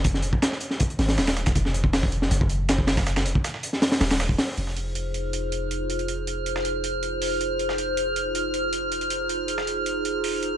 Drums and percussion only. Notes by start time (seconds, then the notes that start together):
0.04 kick, closed hi-hat
0.14 snare
0.22 closed hi-hat
0.33 kick
0.42 snare, closed hi-hat
0.52 snare
0.60 closed hi-hat
0.71 snare
0.80 kick, closed hi-hat
0.90 closed hi-hat
0.99 snare, closed hi-hat, open hi-hat
1.08 snare, open hi-hat
1.18 snare, closed hi-hat, open hi-hat
1.27 snare, closed hi-hat, open hi-hat
1.37 snare, closed hi-hat
1.46 kick, snare, closed hi-hat
1.55 kick, closed hi-hat
1.65 snare
1.74 closed hi-hat
1.84 kick
1.93 snare, closed hi-hat, open hi-hat
2.03 kick
2.12 closed hi-hat
2.22 snare
2.31 closed hi-hat
2.41 kick
2.49 closed hi-hat
2.69 snare, closed hi-hat
2.78 kick
2.87 snare, closed hi-hat, open hi-hat
2.97 kick, snare, closed hi-hat
3.06 snare, closed hi-hat
3.16 snare, closed hi-hat
3.26 closed hi-hat
3.35 kick
3.44 snare, closed hi-hat
3.54 snare
3.63 closed hi-hat
3.73 snare
3.82 snare, closed hi-hat, open hi-hat
3.92 snare, open hi-hat
4.01 snare, closed hi-hat, open hi-hat
4.11 snare, closed hi-hat, open hi-hat
4.20 snare, closed hi-hat, open hi-hat
4.29 kick
4.38 snare, closed hi-hat, open hi-hat
4.48 snare
4.58 closed hi-hat
4.67 snare
4.77 closed hi-hat
4.95 closed hi-hat
5.14 closed hi-hat
5.33 closed hi-hat
5.52 closed hi-hat
5.71 closed hi-hat
5.90 closed hi-hat
5.99 closed hi-hat
6.08 closed hi-hat
6.27 closed hi-hat
6.46 closed hi-hat
6.56 snare
6.65 closed hi-hat
6.84 closed hi-hat
7.03 closed hi-hat
7.22 open hi-hat
7.41 closed hi-hat
7.59 closed hi-hat
7.69 snare
7.78 closed hi-hat
7.97 closed hi-hat
8.16 closed hi-hat
8.35 closed hi-hat
8.54 closed hi-hat
8.73 closed hi-hat
8.92 closed hi-hat
9.01 closed hi-hat
9.10 closed hi-hat
9.29 closed hi-hat
9.48 closed hi-hat
9.58 snare
9.67 closed hi-hat
9.86 closed hi-hat
10.05 closed hi-hat
10.24 open hi-hat
10.43 closed hi-hat